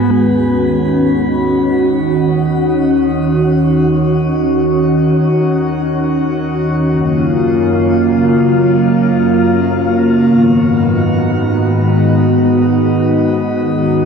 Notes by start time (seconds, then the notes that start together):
0.11 D#2 D#3 C#4 F#4
6.87 F#2 C#3 A#3 F4
10.25 G#2 D#3 B3 F#4
13.63 D#2 D#3 C#4 F#4